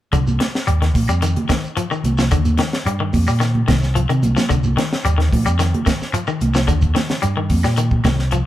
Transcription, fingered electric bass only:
0, 0, Header, 1, 2, 480
1, 0, Start_track
1, 0, Key_signature, -3, "minor"
1, 0, Tempo, 545951
1, 117, Time_signature, 4, 2, 24, 8
1, 7439, End_track
2, 0, Start_track
2, 0, Title_t, "Fingered electric bass"
2, 0, Program_c, 0, 33
2, 113, Note_on_c, 0, 36, 81
2, 324, Note_off_c, 0, 36, 0
2, 599, Note_on_c, 0, 39, 84
2, 839, Note_off_c, 0, 39, 0
2, 839, Note_on_c, 0, 34, 78
2, 947, Note_off_c, 0, 34, 0
2, 961, Note_on_c, 0, 41, 67
2, 1171, Note_off_c, 0, 41, 0
2, 1792, Note_on_c, 0, 36, 81
2, 2005, Note_off_c, 0, 36, 0
2, 2040, Note_on_c, 0, 39, 82
2, 2250, Note_off_c, 0, 39, 0
2, 2511, Note_on_c, 0, 43, 89
2, 2725, Note_off_c, 0, 43, 0
2, 2761, Note_on_c, 0, 41, 80
2, 2867, Note_off_c, 0, 41, 0
2, 2872, Note_on_c, 0, 46, 73
2, 3189, Note_off_c, 0, 46, 0
2, 3242, Note_on_c, 0, 36, 88
2, 3559, Note_off_c, 0, 36, 0
2, 3600, Note_on_c, 0, 48, 77
2, 3715, Note_on_c, 0, 36, 74
2, 3728, Note_off_c, 0, 48, 0
2, 3826, Note_off_c, 0, 36, 0
2, 3959, Note_on_c, 0, 36, 80
2, 4170, Note_off_c, 0, 36, 0
2, 4442, Note_on_c, 0, 39, 92
2, 4683, Note_off_c, 0, 39, 0
2, 4683, Note_on_c, 0, 34, 83
2, 4790, Note_off_c, 0, 34, 0
2, 4806, Note_on_c, 0, 41, 73
2, 5015, Note_off_c, 0, 41, 0
2, 5637, Note_on_c, 0, 36, 82
2, 5847, Note_off_c, 0, 36, 0
2, 5878, Note_on_c, 0, 39, 84
2, 6088, Note_off_c, 0, 39, 0
2, 6360, Note_on_c, 0, 43, 89
2, 6569, Note_off_c, 0, 43, 0
2, 6593, Note_on_c, 0, 41, 82
2, 6703, Note_off_c, 0, 41, 0
2, 6718, Note_on_c, 0, 46, 72
2, 7030, Note_off_c, 0, 46, 0
2, 7074, Note_on_c, 0, 36, 90
2, 7391, Note_off_c, 0, 36, 0
2, 7439, End_track
0, 0, End_of_file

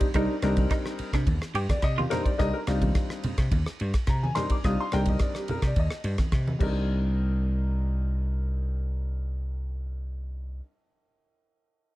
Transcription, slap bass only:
0, 0, Header, 1, 3, 480
1, 0, Start_track
1, 0, Key_signature, -3, "minor"
1, 0, Tempo, 562324
1, 120, Time_signature, 4, 2, 24, 8
1, 10203, End_track
2, 0, Start_track
2, 0, Title_t, "Slap bass"
2, 0, Program_c, 0, 36
2, 126, Note_on_c, 0, 36, 88
2, 220, Note_off_c, 0, 36, 0
2, 363, Note_on_c, 0, 36, 74
2, 549, Note_off_c, 0, 36, 0
2, 971, Note_on_c, 0, 48, 74
2, 1059, Note_off_c, 0, 48, 0
2, 1082, Note_on_c, 0, 39, 84
2, 1177, Note_off_c, 0, 39, 0
2, 1317, Note_on_c, 0, 43, 64
2, 1414, Note_off_c, 0, 43, 0
2, 1564, Note_on_c, 0, 48, 83
2, 1749, Note_off_c, 0, 48, 0
2, 2044, Note_on_c, 0, 36, 81
2, 2138, Note_off_c, 0, 36, 0
2, 2283, Note_on_c, 0, 36, 68
2, 2469, Note_off_c, 0, 36, 0
2, 2886, Note_on_c, 0, 48, 71
2, 2975, Note_off_c, 0, 48, 0
2, 2999, Note_on_c, 0, 39, 83
2, 3095, Note_off_c, 0, 39, 0
2, 3251, Note_on_c, 0, 43, 67
2, 3342, Note_off_c, 0, 43, 0
2, 3481, Note_on_c, 0, 48, 72
2, 3667, Note_off_c, 0, 48, 0
2, 3962, Note_on_c, 0, 36, 84
2, 4056, Note_off_c, 0, 36, 0
2, 4211, Note_on_c, 0, 36, 67
2, 4393, Note_off_c, 0, 36, 0
2, 4800, Note_on_c, 0, 48, 64
2, 4891, Note_off_c, 0, 48, 0
2, 4919, Note_on_c, 0, 39, 70
2, 5014, Note_off_c, 0, 39, 0
2, 5157, Note_on_c, 0, 43, 57
2, 5253, Note_off_c, 0, 43, 0
2, 5400, Note_on_c, 0, 48, 71
2, 5586, Note_off_c, 0, 48, 0
2, 5637, Note_on_c, 0, 36, 69
2, 9043, Note_off_c, 0, 36, 0
2, 10203, End_track
3, 0, Start_track
3, 0, Title_t, "Muted slap bass strokes"
3, 850, Note_on_c, 9, 29, 28
3, 935, Note_off_c, 9, 29, 0
3, 2768, Note_on_c, 9, 29, 28
3, 2854, Note_off_c, 9, 29, 0
3, 4690, Note_on_c, 9, 29, 24
3, 4775, Note_off_c, 9, 29, 0
3, 10203, End_track
0, 0, End_of_file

